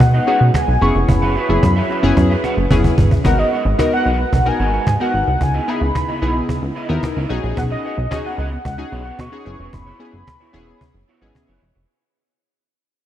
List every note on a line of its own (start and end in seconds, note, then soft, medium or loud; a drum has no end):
0.00 0.20 B2 loud
0.00 0.77 G#3 medium
0.00 0.77 B3 medium
0.00 0.77 D#4 medium
0.00 0.57 F#5 loud
0.00 muted clean electric guitar stroke soft
0.00 cajon bass loud
0.14 0.26 D#4 medium
0.14 0.27 G#4 medium
0.14 0.27 B4 medium
0.14 0.27 D#5 medium
0.14 cajon slap soft
0.27 0.51 C#4 medium
0.27 0.44 D#4 medium
0.27 0.51 D#4 medium
0.27 0.51 F#4 medium
0.27 0.41 G#4 loud
0.27 0.52 G#4 medium
0.27 0.40 B4 loud
0.27 0.41 F#5 loud
0.27 cajon slap soft
0.41 0.51 B2 medium
0.41 muted clean electric guitar stroke soft
0.41 cajon slap soft
0.54 0.82 G#5 loud
0.54 muted clean electric guitar stroke soft
0.54 cajon bass loud
0.54 cajon slap loud
0.68 0.78 B1 medium
0.68 muted clean electric guitar stroke soft
0.68 cajon slap soft
0.81 0.91 F#1 medium
0.81 3.22 F#3 medium
0.81 1.35 B3 medium
0.81 3.22 C#4 medium
0.81 1.36 C#4 medium
0.81 3.22 E4 medium
0.81 1.36 E4 medium
0.81 3.22 G#4 medium
0.81 1.36 G#4 medium
0.81 3.22 B4 medium
0.81 0.94 C#6 loud
0.81 cajon slap medium
0.95 1.05 F1 loud
0.95 muted clean electric guitar stroke soft
0.95 cajon slap soft
1.08 1.37 F#1 loud
1.08 2.67 B5 loud
1.08 muted clean electric guitar stroke soft
1.08 cajon bass loud
1.22 1.34 C#4 medium
1.22 1.35 F#4 medium
1.22 1.35 B4 medium
1.22 1.36 F#5 medium
1.22 cajon slap soft
1.35 1.49 C#4 medium
1.35 1.48 F#4 medium
1.35 1.48 B4 medium
1.35 1.48 E5 medium
1.35 cajon slap soft
1.49 1.59 F#1 medium
1.49 1.73 B3 medium
1.49 1.73 C#4 medium
1.49 1.73 E4 medium
1.49 1.73 G#4 medium
1.49 muted clean electric guitar stroke soft
1.49 cajon slap soft
1.62 1.82 F#2 loud
1.62 muted clean electric guitar stroke soft
1.62 cajon bass loud
1.62 cajon slap loud
1.76 1.88 C#4 medium
1.76 1.89 F#4 medium
1.76 1.89 B4 medium
1.76 1.89 E5 medium
1.76 cajon slap soft
1.89 2.03 C#4 medium
1.89 2.02 F#4 medium
1.89 2.02 B4 medium
1.89 2.02 E5 medium
1.89 cajon slap soft
2.03 2.13 F#1 medium
2.03 2.33 B3 loud
2.03 2.33 C#4 loud
2.03 2.33 E4 medium
2.03 2.33 G#4 loud
2.03 muted clean electric guitar stroke soft
2.03 cajon slap soft
2.16 2.36 F#2 loud
2.16 muted clean electric guitar stroke soft
2.16 cajon bass loud
2.16 cajon slap medium
2.30 2.42 C#4 soft
2.30 2.42 F#4 medium
2.30 2.43 B4 medium
2.30 2.43 E5 medium
2.30 cajon slap soft
2.43 2.60 C#4 medium
2.43 2.57 F#4 loud
2.43 2.56 B4 medium
2.43 2.57 F#5 loud
2.43 cajon slap medium
2.57 2.67 F#1 loud
2.57 muted clean electric guitar stroke soft
2.57 cajon slap soft
2.70 2.90 F#1 loud
2.70 2.94 B3 medium
2.70 2.95 C#4 medium
2.70 2.95 E4 medium
2.70 2.95 G#4 loud
2.70 muted clean electric guitar stroke soft
2.70 cajon bass loud
2.84 muted clean electric guitar stroke soft
2.84 cajon bass medium
2.98 3.17 G1 loud
2.98 cajon bass loud
3.11 muted clean electric guitar stroke soft
3.11 cajon bass medium
3.24 3.44 G#1 loud
3.24 7.53 G#3 medium
3.24 3.48 B3 medium
3.24 7.26 D#4 medium
3.24 3.48 D#4 medium
3.24 5.39 F#4 medium
3.24 3.49 F#4 medium
3.24 5.39 A#4 medium
3.24 3.49 A#4 medium
3.24 5.39 B4 medium
3.24 3.40 F#5 loud
3.24 muted clean electric guitar stroke soft
3.24 cajon bass loud
3.38 3.50 B3 medium
3.38 3.51 F#4 medium
3.38 3.51 A#4 medium
3.38 3.52 D#5 medium
3.38 3.79 D#5 medium
3.52 3.65 B3 medium
3.52 3.65 F#4 medium
3.52 3.65 A#4 medium
3.52 3.65 F#5 medium
3.52 cajon slap soft
3.65 3.75 G#1 loud
3.65 muted clean electric guitar stroke soft
3.65 cajon slap soft
3.78 4.08 B3 medium
3.78 4.09 D#4 medium
3.78 4.09 F#4 medium
3.78 4.09 A#4 loud
3.78 3.92 D#5 medium
3.78 muted clean electric guitar stroke soft
3.78 cajon bass loud
3.78 cajon slap loud
3.92 4.04 B3 medium
3.92 4.05 F#4 medium
3.92 4.05 A#4 medium
3.92 4.06 D#5 medium
3.92 4.31 F#5 loud
3.92 cajon slap soft
4.06 4.25 B1 medium
4.06 4.23 B3 medium
4.06 4.19 F#4 medium
4.06 4.19 A#4 medium
4.06 4.18 D#5 loud
4.06 cajon slap soft
4.19 muted clean electric guitar stroke soft
4.19 cajon slap soft
4.32 4.52 B1 medium
4.32 4.49 F#5 loud
4.32 muted clean electric guitar stroke soft
4.32 cajon bass loud
4.46 4.70 B3 medium
4.46 4.70 D#4 medium
4.46 4.70 F#4 medium
4.46 4.70 A#4 loud
4.46 4.87 G#5 loud
4.46 muted clean electric guitar stroke soft
4.46 cajon slap soft
4.60 4.79 G#1 loud
4.60 4.73 B3 medium
4.60 4.73 F#4 medium
4.60 4.72 A#4 loud
4.60 4.73 D#5 loud
4.60 cajon slap soft
4.73 4.86 B3 soft
4.73 4.86 F#4 medium
4.73 4.86 A#4 medium
4.73 4.87 F#5 medium
4.73 cajon slap soft
4.87 4.96 G#2 medium
4.87 4.94 G#5 loud
4.87 cajon bass loud
4.87 cajon slap loud
5.00 5.30 B3 medium
5.00 5.12 B3 medium
5.00 5.30 D#4 medium
5.00 5.30 F#4 medium
5.00 5.13 F#4 medium
5.00 5.13 A#4 medium
5.00 5.31 A#4 medium
5.00 5.13 D#5 medium
5.00 5.44 F#5 medium
5.00 cajon slap soft
5.14 5.24 G#1 medium
5.14 muted clean electric guitar stroke soft
5.14 cajon slap soft
5.27 5.37 C2 medium
5.27 muted clean electric guitar stroke soft
5.27 cajon slap soft
5.40 5.60 C#2 loud
5.40 7.28 C#3 medium
5.40 7.55 B3 medium
5.40 7.28 E4 medium
5.40 5.71 G#5 loud
5.40 muted clean electric guitar stroke soft
5.40 cajon bass loud
5.54 5.66 B3 medium
5.54 5.67 E4 medium
5.54 5.67 G#4 medium
5.54 5.68 D#5 medium
5.67 5.81 B3 medium
5.67 5.92 B3 medium
5.67 5.92 D#4 medium
5.67 5.81 E4 medium
5.67 5.92 E4 medium
5.67 5.81 G#4 medium
5.67 5.92 G#4 loud
5.67 5.81 E5 medium
5.67 5.96 B5 loud
5.67 cajon slap soft
5.81 5.91 C#2 loud
5.81 muted clean electric guitar stroke soft
5.81 cajon slap soft
5.95 6.46 B5 loud
5.95 muted clean electric guitar stroke soft
5.95 cajon bass loud
5.95 cajon slap loud
6.08 6.20 B3 medium
6.08 6.21 E4 medium
6.08 6.21 G#4 medium
6.08 6.22 D#5 medium
6.08 cajon slap soft
6.22 6.41 B1 loud
6.22 6.39 B3 medium
6.22 6.52 B3 medium
6.22 6.52 D#4 medium
6.22 6.35 E4 medium
6.22 6.52 E4 medium
6.22 6.34 G#4 medium
6.22 6.52 G#4 loud
6.22 6.34 D#5 medium
6.22 cajon slap soft
6.35 muted clean electric guitar stroke medium
6.35 cajon slap soft
6.49 muted clean electric guitar stroke soft
6.49 cajon bass loud
6.62 6.72 C#2 medium
6.62 muted clean electric guitar stroke soft
6.62 cajon slap soft
6.75 6.89 B3 medium
6.75 6.89 E4 medium
6.75 6.88 G#4 medium
6.75 6.89 D#5 loud
6.75 cajon slap soft
6.89 6.99 D#2 loud
6.89 7.19 B3 medium
6.89 7.02 B3 soft
6.89 7.19 D#4 medium
6.89 7.19 E4 medium
6.89 7.02 E4 soft
6.89 7.02 G#4 soft
6.89 7.19 A#4 loud
6.89 7.03 E5 medium
6.89 cajon slap soft
7.03 muted clean electric guitar stroke soft
7.03 cajon bass loud
7.03 cajon slap loud
7.16 7.26 C#2 medium
7.16 7.29 B3 medium
7.16 7.30 E4 medium
7.16 7.29 G#4 medium
7.16 7.30 D#5 medium
7.16 cajon slap soft
7.29 7.40 B1 medium
7.29 7.95 C#4 medium
7.29 7.95 D#4 medium
7.29 7.57 D#4 medium
7.29 7.95 F#4 medium
7.29 7.95 G#4 loud
7.29 muted clean electric guitar stroke soft
7.29 cajon slap soft
7.43 7.53 A#1 loud
7.43 muted clean electric guitar stroke medium
7.43 cajon slap soft
7.57 7.76 B1 loud
7.57 7.64 F#5 loud
7.57 muted clean electric guitar stroke soft
7.57 cajon bass loud
7.70 7.83 B3 medium
7.70 7.83 F#4 medium
7.70 7.84 G#4 medium
7.70 7.85 D#5 medium
7.70 8.09 D#5 medium
7.70 cajon slap soft
7.84 7.97 B3 medium
7.84 7.97 F#4 medium
7.84 7.97 G#4 medium
7.84 7.97 F#5 medium
7.84 cajon slap soft
7.97 8.07 B1 loud
7.97 muted clean electric guitar stroke soft
7.97 cajon slap soft
8.11 8.41 C#4 medium
8.11 8.41 D#4 medium
8.11 8.41 F#4 medium
8.11 8.41 G#4 medium
8.11 8.18 D#5 medium
8.11 muted clean electric guitar stroke medium
8.11 cajon bass loud
8.11 cajon slap loud
8.25 8.37 B3 soft
8.25 8.37 F#4 medium
8.25 8.37 G#4 medium
8.25 8.38 D#5 medium
8.25 8.63 F#5 loud
8.38 8.57 C#2 medium
8.38 8.55 B3 medium
8.38 8.51 F#4 medium
8.38 8.51 G#4 medium
8.38 8.50 D#5 medium
8.38 cajon slap soft
8.51 muted clean electric guitar stroke medium
8.51 cajon slap soft
8.65 8.84 C#2 medium
8.65 9.21 F#5 loud
8.65 muted clean electric guitar stroke soft
8.65 cajon bass loud
8.78 9.02 C#4 medium
8.78 9.02 D#4 medium
8.78 9.03 F#4 medium
8.78 9.03 G#4 medium
8.78 muted clean electric guitar stroke medium
8.78 cajon slap soft
8.92 9.12 B1 medium
8.92 9.05 B3 medium
8.92 9.05 F#4 medium
8.92 9.04 G#4 loud
8.92 9.05 D#5 medium
8.92 cajon slap soft
9.05 9.17 B3 medium
9.05 9.18 F#4 medium
9.05 9.18 G#4 medium
9.05 9.19 F#5 medium
9.05 cajon slap soft
9.19 9.29 B2 medium
9.19 9.36 B3 medium
9.19 9.32 F#4 medium
9.19 9.31 G#4 medium
9.19 9.31 D#5 medium
9.19 9.75 C#6 loud
9.19 cajon bass loud
9.19 cajon slap loud
9.32 9.44 C#4 medium
9.32 9.46 D#4 medium
9.32 9.46 F#4 medium
9.32 9.45 G#4 medium
9.32 muted clean electric guitar stroke soft
9.45 9.56 F#1 loud
9.45 9.89 B3 medium
9.45 9.89 C#4 medium
9.45 9.89 E4 medium
9.45 9.89 G#4 medium
9.45 muted clean electric guitar stroke soft
9.45 cajon slap soft
9.59 9.69 F1 medium
9.59 9.72 B3 soft
9.59 9.72 E4 medium
9.59 9.72 F#4 medium
9.59 9.72 C#5 medium
9.59 cajon slap soft
9.73 9.92 F#1 loud
9.73 11.36 B5 loud
9.73 muted clean electric guitar stroke soft
9.73 cajon bass loud
9.86 9.99 B3 medium
9.86 9.99 E4 medium
9.86 10.00 F#4 medium
9.86 10.01 C#5 medium
9.86 cajon slap soft
9.99 10.24 B3 medium
9.99 10.13 B3 medium
9.99 10.24 C#4 medium
9.99 10.24 E4 medium
9.99 10.13 E4 medium
9.99 10.12 F#4 medium
9.99 10.24 G#4 loud
9.99 10.13 D#5 medium
9.99 cajon slap soft
10.13 10.23 F#1 loud
10.13 muted clean electric guitar stroke soft
10.27 muted clean electric guitar stroke soft
10.27 cajon bass loud
10.27 cajon slap loud
10.40 10.53 B3 medium
10.40 10.53 E4 medium
10.40 10.53 F#4 medium
10.40 10.54 C#5 medium
10.40 cajon slap soft
10.53 10.73 E1 loud
10.53 10.84 B3 loud
10.53 10.71 B3 medium
10.53 10.84 C#4 loud
10.53 10.84 E4 loud
10.53 10.67 E4 medium
10.53 10.67 F#4 medium
10.53 10.84 G#4 loud
10.53 10.66 C#5 medium
10.67 muted clean electric guitar stroke medium
10.81 muted clean electric guitar stroke soft
10.81 cajon bass loud
10.94 11.04 F#1 medium
10.94 muted clean electric guitar stroke soft
11.08 11.21 B3 loud
11.08 11.21 E4 loud
11.08 11.21 F#4 loud
11.08 11.21 C#5 loud
11.08 cajon slap soft
11.21 11.31 G#1 loud
11.21 11.52 B3 medium
11.21 11.34 B3 medium
11.21 11.52 C#4 medium
11.21 11.52 E4 medium
11.21 11.34 E4 medium
11.21 11.34 F#4 medium
11.21 11.52 G#4 medium
11.21 11.35 D#5 medium
11.35 muted clean electric guitar stroke soft
11.35 cajon bass loud
11.35 cajon slap loud
11.48 11.58 F#1 medium
11.48 11.61 B3 medium
11.48 11.61 E4 medium
11.48 11.61 F#4 medium
11.48 11.62 C#5 medium
11.62 11.72 E1 medium
11.62 muted clean electric guitar stroke soft
11.76 11.85 F1 medium
11.76 muted clean electric guitar stroke soft